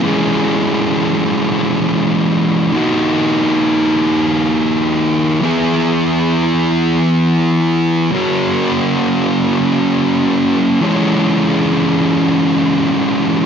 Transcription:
distorted electric guitar
0.04 E3 G#3 C#4 G#4
2.73 D#3 A#3 D#4 F#4
5.41 E3 B3 E4 G#4
8.12 F#3 A#3 C#4 F#4
10.81 E3 G#3 C#4 G#4

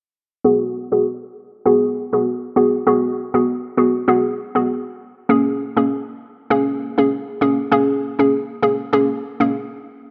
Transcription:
synth pluck
0.44 B3 F#4 G#4
0.92 B3 F#4 G#4
1.65 B3 F#4 G#4
2.13 B3 F#4 G#4
2.56 B3 F#4 G#4
2.87 B3 F#4 G#4
3.34 B3 F#4 G#4
3.77 B3 F#4 G#4
4.08 B3 F#4 G#4
4.55 B3 F#4 G#4
5.29 A#3 C#4 G#4
5.77 A#3 C#4 G#4
6.50 A#3 C#4 G#4
6.98 A#3 C#4 G#4
7.41 A#3 C#4 G#4
7.72 A#3 C#4 G#4
8.19 A#3 C#4 G#4
8.62 A#3 C#4 G#4
8.93 A#3 C#4 G#4
9.40 A#3 C#4 G#4

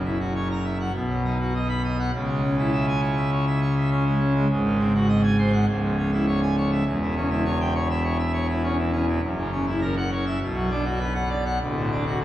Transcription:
pipe organ
Already playing: F#1 F#2
0.05 E4
0.20 F#4
0.35 C#5
0.51 A#5
0.64 E5
0.80 F#5
0.94 B1 B2
1.09 F#3
1.25 D#4
1.40 F#4
1.55 D#5
1.69 B5
1.84 D#5
1.99 F#5
2.13 C#2 C#3
2.28 G#3
2.42 C#4
2.58 E4
2.72 E5
2.87 G#5
3.02 C#5
3.17 E5
3.32 C#5
3.47 E5
3.62 C#5
3.76 E5
3.91 C#4
4.06 G#3
4.20 C#4
4.35 G#3
4.50 G#1 G#2
4.65 D#3
4.79 C4
4.95 F#4
5.08 D#5
5.23 G#5
5.38 C5
5.53 F#5
5.68 C#1 C#2
5.83 G#2
5.98 C#4
6.12 E4
6.27 C#5
6.42 G#5
6.57 C#5
6.72 E5
6.86 E1 E2
7.02 E3
7.17 C#4
7.30 E4
7.45 C#5
7.60 G5
7.75 C#5
7.90 E5
8.04 C#5
8.19 E5
8.33 C#5
8.49 E4
8.63 C#4
8.77 E3
8.92 C#4
9.08 E3
9.22 F#1 F#2
9.37 C#3
9.52 C#4
9.67 E4
9.81 A#4
9.97 F#5
10.11 C#5
10.27 E5
10.41 B1 B2
10.56 F#3
10.71 D4
10.85 F#4
10.99 B4
11.14 F#5
11.30 D5
11.45 F#5
11.60 D1 D2
11.76 A2
11.91 D4
12.06 F#4
12.21 A4

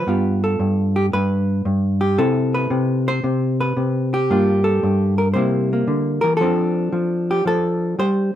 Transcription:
hollow-body jazz guitar
Already playing: B4
0.07 G2 B3 F4 G4
0.44 A4
0.59 G2
0.96 G4
1.13 G2 B4
1.65 G2
2.01 G4
2.18 C3 C4 E4 A4
2.54 B4
2.70 C3
3.08 C5
3.24 C3
3.61 B4
3.77 C3
4.14 G4
4.30 G2 A#3 D4 F4
4.64 A4
4.83 G2
5.18 A#4
5.34 C3 G3 A#3 C5
5.38 E4
5.73 A#3
5.88 D3
6.21 E3 A#4
6.37 F3 A4
6.41 C4 D4
6.92 F3
7.31 G4
7.46 F3 A4
7.99 G3 C5

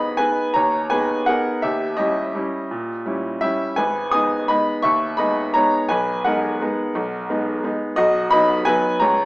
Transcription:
upright piano
Already playing: G#1 B3 D#4 G#4 D#5 B5
0.17 B3 D#4 G#4 B4 G#5
0.54 D#2 C#5 A#5
0.90 B3 D#4 G#4 B4 G#5
1.26 B3 D#4 G#4 A#4 F#5
1.62 D#2 G4 E5
1.97 G3 C#4 E4 G4 D#5
2.35 G3 C#4 E4
2.71 A#2
3.06 G3 C#4 E4
3.41 G3 C#4 E4 G4 E5
3.76 G#1 B4 G#5
4.11 G#3 B3 D#4 G#5 D#6
4.48 G#3 B3 D#4 D#5 B5
4.82 D#2 E5 C#6
5.17 G#3 B3 D#4 D#5 B5
5.54 G#3 B3 D#4 C#5 A#5
5.89 B1 B4 G#5
6.25 G#3 B3 D#4 A#4 F#5
6.61 G#3 B3 D#4
6.95 B1
7.30 G#3 B3 D#4
7.64 G#3 B3 D#4
7.96 B1 F#4 D#5
8.31 F#3 B3 D#4 D#5 B5
8.65 F#3 B3 D#4 B4 G#5
9.00 C#2 C#5 A#5

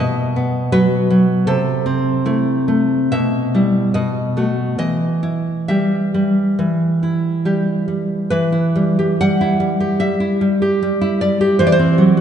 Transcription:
nylon-string guitar
Already playing: B2 D#5
0.36 B3
0.72 F#3 F#4 B4
1.10 F#3
1.47 C3 A4
1.86 C4
2.25 A3 E4
2.68 A3
3.12 B2 E5
3.54 G3 E4
3.94 B2 D#5
4.37 A3 F#4
4.78 E3 D#5
5.23 E4
5.68 G3 G4 E5
6.14 G3
6.59 E3
7.03 E4
7.45 G3 G4
7.88 G3
8.30 E3 B4
8.52 E4
8.76 G3
8.99 G4
9.21 G3 F#5
9.41 E4
9.60 G3
9.80 G4
10.00 G3 E5
10.20 E4
10.41 G3
10.62 G4
10.83 G3
11.01 E4
11.21 G3 D5
11.41 G4
11.59 E3 C5
11.67 D5
11.72 C5
11.79 C4
11.98 F#3
12.17 F#4

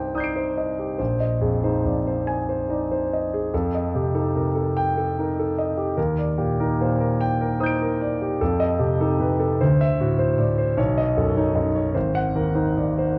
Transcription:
grand piano
Already playing: C2 G2 D#4 G4 C5 D5 D#5 G5
0.15 D#4 D5 D#6 G6
0.20 C7 D7
0.36 C5
0.58 D#5
0.79 G4
0.98 A#1 C5
1.20 D#5
1.41 F2 G#4
1.64 D#4 C5
1.85 F2 D5
2.07 C5
2.27 G#5
2.49 C5
2.69 D#4 D5
2.91 C5
3.13 D#5
3.34 G#4
3.54 F2 A4
3.74 D#5
3.95 C3 G4
4.15 D#4 A4
4.35 C3 A#4
4.55 A4
4.77 G5
4.98 A4
5.19 D#4 A#4
5.39 A4
5.58 D#5
5.77 G4
5.97 D#2 A#4
6.18 D5
6.38 A#2 G4
6.60 D#4 A#4
6.81 A#2 C5
7.00 A#4
7.21 G5
7.41 A#4
7.60 D#4 C5 D#6 G6
7.66 D7
7.82 A#4
8.01 D5
8.21 G4
8.41 F2 A4
8.60 D#5
8.79 C3 G4
9.00 D#4 A4
9.20 C3 B4
9.40 A4
9.61 D2 C5
9.81 E5
10.00 A2 F#4
10.19 C5
10.37 A2 D5
10.58 C5
10.77 B1 C#5
10.98 D#5
11.18 F#2 A4
11.37 D#4 C#5
11.55 F#2 D#5
11.75 C#5
11.94 G#1 C5
12.15 F#5
12.36 D#2 A#4
12.55 D#4 C5
12.77 D#2 D5
12.98 C5

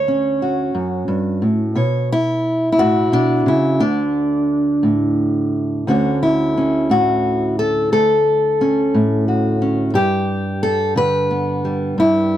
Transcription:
steel-string acoustic guitar
Already playing: D2 C#5
0.08 C#4
0.42 F#4
0.75 F#2
1.08 G2
1.42 A2
1.75 B2 C#5
2.12 E4
2.72 E4
2.78 A2 F#4
3.12 B2 D4
3.46 C#3 E4
3.80 D2 D3 D4
4.83 A2
5.87 D2 D3 C#4 F#4 C#5
6.23 E4
6.57 C#4
6.90 A2 F#4
7.59 A4
7.92 D2 A4
8.61 C#4
8.94 A2
9.28 F#4
9.62 C#4
9.94 G2 G4
10.63 A4
10.96 D3 B4
11.31 B3
11.65 G3
11.98 G2 E4

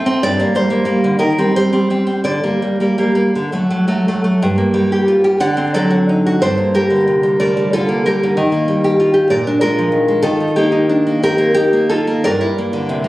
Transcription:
nylon-string guitar
Already playing: A3 A4
0.06 C4
0.23 G2 D5
0.40 G3 A#3
0.55 G3 C5
0.70 G3 A#3
0.85 G3 A#3
1.04 D3
1.19 D#3 A#4
1.38 G3 C4
1.56 G3 C5
1.73 G3 C4
1.90 G3 C4
2.07 C4
2.24 D3 D5
2.43 G3 A#3
2.62 G3
2.80 G3 A#3
2.98 G3 A#3
3.15 A#3
3.35 D3
3.52 F#3 A3
3.70 F#3
3.88 F#3 A3
4.08 F#3 A3
4.24 A3
4.42 G2
4.58 A#3
4.74 G3
4.92 G4
5.08 F4
5.24 G4
5.40 D3 D5 F#5
5.57 C4
5.74 F#3 A4 D5
5.91 F#4
6.09 D#4
6.26 F#4
6.42 G2 A4 C5
6.58 A#3
6.74 G3 G4 A#4
6.90 D3
7.08 C3
7.23 G3
7.40 A3 A#4 D5
7.57 G3
7.73 D3 F4 A4
7.89 A#3
8.06 G3 G4 A#4
8.23 D3
8.37 D#3
8.52 A#3
8.68 G3
8.84 G4
9.00 F4
9.14 G4
9.30 A#2 A#4 D5
9.47 D4
9.61 G#3 F4 A#4
9.79 F3
9.92 D#3
10.08 G#3
10.22 D#3 F4 A4
10.40 D#4
10.56 A#3 D#4 G4
10.72 D#4
10.89 D4
11.07 A#3
11.23 C4 G4 A#4
11.38 A#3
11.54 D#4 G4
11.73 A#3
11.89 D#4 F4 A4
12.07 A#3
12.24 G2 A#4 D5
12.41 E4
12.58 A#3
12.73 D3
12.89 C3
13.04 A#3

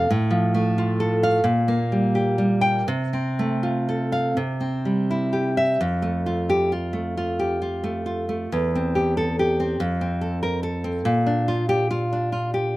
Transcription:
nylon-string guitar
Already playing: A4 F5
0.10 A2
0.31 F3
0.55 A3
0.78 F4
1.00 A4
1.23 F5
1.44 A#2
1.68 A#3
1.92 G3
2.15 G4
2.38 G3
2.61 G5
2.88 C3
3.13 C4
3.39 A3
3.63 F4
3.89 A4
4.12 F5
4.37 C3
4.60 C4
4.85 G3
5.11 E4
5.33 G4
5.57 E5
5.81 F2
6.02 A3
6.26 F4
6.50 G4
6.72 F4
6.93 A3
7.17 F4
7.39 G4
7.62 F4
7.84 A3
8.06 F4
8.29 A3
8.52 E2
8.75 C4
8.95 G4
9.17 A4
9.39 G4
9.60 C4
9.80 F2
10.01 C4
10.21 A4
10.43 A#4
10.63 A4
10.84 C4
11.05 A#2
11.27 D4
11.48 F4
11.69 G4
11.91 F4
12.13 D4
12.32 F4
12.54 G4

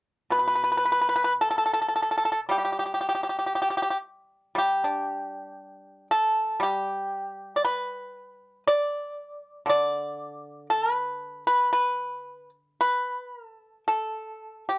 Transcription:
pipa
0.30 B2 B4
0.39 B4
0.48 B4
0.55 B4
0.64 B4
0.72 B4
0.77 B4
0.85 B4
0.92 B4
1.02 B4
1.09 B4
1.16 B4
1.24 B4
1.41 A4
1.51 A4
1.58 A4
1.66 A4
1.74 A4
1.82 A4
1.89 A4
1.96 A4
2.03 A4
2.11 A4
2.18 A4
2.25 A4
2.32 A4
2.49 G3 G4
2.58 G4
2.65 G4
2.72 G4
2.79 G4
2.86 G4
2.94 G4
3.01 G4
3.09 G4
3.15 G4
3.23 G4
3.29 G4
3.39 G4
3.46 G4
3.55 G4
3.62 G4
3.70 G4
3.77 G4
3.82 G4
3.90 G4
4.55 G3 G4
4.84 D4
6.11 A4
6.60 G3 G4
7.56 D5
7.65 B4
8.68 D5
9.66 D3 D5
10.70 A4
10.92 B4
11.47 B4
11.73 B4
12.81 B4
13.34 A#4
13.47 A4
13.88 A4
14.69 G4

